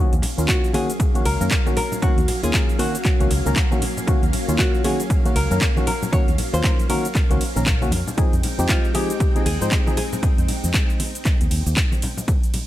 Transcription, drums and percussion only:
0.13 closed hi-hat, shaker
0.22 open hi-hat, ride, low conga
0.38 closed hi-hat, high conga, shaker
0.48 kick, clap, closed hi-hat, shaker
0.64 shaker
0.73 open hi-hat, ride, high conga
0.90 closed hi-hat, shaker
1.00 kick, closed hi-hat, shaker
1.15 closed hi-hat, high conga, shaker
1.25 open hi-hat, ride
1.41 shaker
1.51 kick, clap, closed hi-hat, shaker
1.66 high conga, shaker
1.77 open hi-hat, ride, low conga
1.92 low conga, shaker
2.02 kick, closed hi-hat, high conga, shaker
2.18 closed hi-hat, shaker
2.28 open hi-hat, ride, low conga
2.43 closed hi-hat, high conga, shaker
2.54 kick, clap, closed hi-hat, shaker
2.69 shaker
2.79 open hi-hat, ride, high conga
2.95 closed hi-hat, shaker
3.05 kick, clap, closed hi-hat, shaker
3.20 closed hi-hat, high conga, shaker
3.31 open hi-hat, ride
3.46 shaker
3.56 kick, clap, closed hi-hat, shaker
3.72 high conga, shaker
3.82 open hi-hat, ride, low conga
3.97 low conga, shaker
4.07 kick, closed hi-hat, high conga, shaker
4.23 closed hi-hat, shaker
4.33 open hi-hat, ride, low conga
4.48 closed hi-hat, high conga, shaker
4.59 kick, clap, closed hi-hat, shaker
4.74 shaker
4.84 open hi-hat, ride, high conga
5.00 closed hi-hat, shaker
5.10 kick, closed hi-hat, shaker
5.25 closed hi-hat, high conga, shaker
5.36 open hi-hat, ride
5.51 shaker
5.61 kick, clap, closed hi-hat, shaker
5.77 high conga, shaker
5.87 open hi-hat, ride, low conga
6.03 low conga, shaker
6.13 kick, closed hi-hat, high conga, shaker
6.28 closed hi-hat, shaker
6.38 open hi-hat, ride, low conga
6.53 closed hi-hat, high conga, shaker
6.64 kick, clap, closed hi-hat, shaker
6.79 closed hi-hat, shaker
6.90 open hi-hat, ride, high conga
7.05 closed hi-hat, shaker
7.15 kick, clap, closed hi-hat, shaker
7.31 closed hi-hat, high conga, shaker
7.41 open hi-hat, ride
7.56 shaker
7.66 kick, clap, closed hi-hat, shaker
7.82 high conga, shaker
7.92 open hi-hat, ride, low conga
8.07 low conga, shaker
8.18 kick, closed hi-hat, high conga, shaker
8.33 closed hi-hat, shaker
8.43 open hi-hat, ride, low conga
8.59 closed hi-hat, high conga, shaker
8.69 kick, clap, closed hi-hat, shaker
8.85 shaker
8.95 open hi-hat, ride, high conga
9.10 closed hi-hat, shaker
9.20 kick, closed hi-hat, shaker
9.36 closed hi-hat, high conga, shaker
9.46 open hi-hat, ride
9.62 shaker
9.71 kick, clap, closed hi-hat, shaker
9.87 high conga, shaker
9.97 open hi-hat, ride, low conga
10.13 low conga, shaker
10.23 kick, closed hi-hat, high conga, shaker
10.38 closed hi-hat, shaker
10.48 open hi-hat, ride, low conga
10.64 closed hi-hat, high conga, shaker
10.74 kick, clap, closed hi-hat, shaker
10.90 shaker
11.00 open hi-hat, ride, high conga
11.15 closed hi-hat, shaker
11.25 kick, clap, closed hi-hat, shaker
11.41 closed hi-hat, high conga, shaker
11.51 open hi-hat, ride
11.67 shaker
11.77 kick, clap, closed hi-hat, shaker
11.92 high conga, shaker
12.02 open hi-hat, ride, low conga
12.17 low conga, shaker
12.28 kick, closed hi-hat, high conga, shaker
12.43 closed hi-hat, shaker
12.54 open hi-hat, ride, low conga

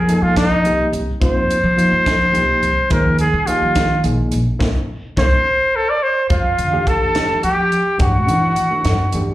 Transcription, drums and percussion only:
0.09 closed hi-hat
0.36 kick, snare, closed hi-hat
0.65 closed hi-hat
0.93 closed hi-hat
1.22 kick, closed hi-hat
1.50 closed hi-hat
1.78 closed hi-hat
2.06 kick, snare, closed hi-hat
2.35 closed hi-hat
2.63 closed hi-hat
2.90 kick, closed hi-hat
3.18 closed hi-hat
3.47 closed hi-hat
3.75 kick, snare, closed hi-hat
4.04 closed hi-hat
4.31 closed hi-hat
4.60 kick, snare
5.17 kick, snare
6.30 kick, closed hi-hat
6.58 closed hi-hat
6.87 kick, closed hi-hat
7.15 snare, closed hi-hat
7.43 closed hi-hat
7.72 closed hi-hat
7.99 kick, closed hi-hat
8.28 closed hi-hat
8.56 closed hi-hat
8.84 snare, closed hi-hat
9.12 closed hi-hat

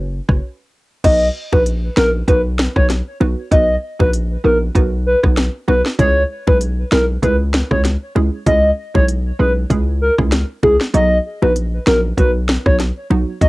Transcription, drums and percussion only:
0.29 kick, cross-stick
1.04 kick, closed hi-hat, crash
1.53 kick, high bongo
1.66 closed hi-hat
1.97 snare
2.28 kick, closed hi-hat
2.59 snare
2.76 kick, cross-stick
2.90 snare, closed hi-hat, high bongo
3.21 high bongo, low bongo
3.52 kick, closed hi-hat
4.00 kick, high bongo
4.13 closed hi-hat
4.75 kick, closed hi-hat
5.24 kick, cross-stick
5.37 snare, closed hi-hat, high bongo
5.68 high bongo, low bongo
5.86 snare
5.99 kick, closed hi-hat
6.47 kick, high bongo
6.61 closed hi-hat
6.92 snare
7.23 kick, closed hi-hat
7.54 snare
7.71 kick, cross-stick
7.85 snare, closed hi-hat, high bongo
8.16 high bongo, low bongo
8.46 kick, closed hi-hat
8.95 kick, high bongo
9.08 closed hi-hat
9.70 kick, closed hi-hat
10.18 kick, cross-stick
10.32 snare, closed hi-hat, high bongo
10.63 kick, high bongo, low bongo
10.81 snare
10.94 closed hi-hat
11.42 high bongo
11.56 closed hi-hat
11.87 snare
12.18 kick, closed hi-hat
12.49 snare
12.66 kick, cross-stick
12.80 snare, closed hi-hat, high bongo
13.11 high bongo, low bongo
13.41 kick, closed hi-hat

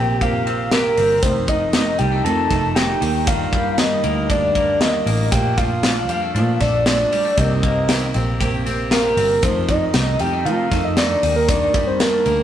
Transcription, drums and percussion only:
0.21 kick, ride
0.47 ride
0.71 snare, ride
0.97 open hi-hat, ride
1.23 kick, hi-hat pedal, ride
1.48 kick, ride
1.73 snare, ride
1.99 ride
2.26 ride
2.51 kick, snare, ride
2.76 snare, ride
3.02 open hi-hat, ride
3.27 kick, hi-hat pedal, ride
3.53 kick, ride
3.78 snare, ride
4.04 ride
4.30 kick, ride
4.55 kick, ride
4.81 snare, ride
5.07 open hi-hat, ride
5.32 kick, hi-hat pedal, ride, tambourine
5.57 kick, ride, tambourine
5.83 snare, ride, tambourine
6.09 ride, tambourine
6.36 ride
6.61 kick, snare, ride, tambourine
6.86 snare, ride, tambourine
7.12 open hi-hat, ride, tambourine
7.38 kick, hi-hat pedal, ride, tambourine
7.63 kick, ride
7.89 snare, ride, tambourine
8.14 ride, tambourine
8.41 kick, ride, tambourine
8.66 ride, tambourine
8.91 snare, ride, tambourine
9.17 open hi-hat, ride, tambourine
9.42 kick, hi-hat pedal, ride, tambourine
9.69 kick, ride, tambourine
9.94 snare, ride, tambourine
10.19 ride, tambourine
10.46 ride
10.71 kick, snare, ride, tambourine
10.97 snare, ride, tambourine
11.23 open hi-hat, ride, tambourine
11.49 kick, hi-hat pedal, ride, tambourine
11.74 kick, ride, tambourine
12.00 snare, ride, tambourine
12.26 ride, tambourine

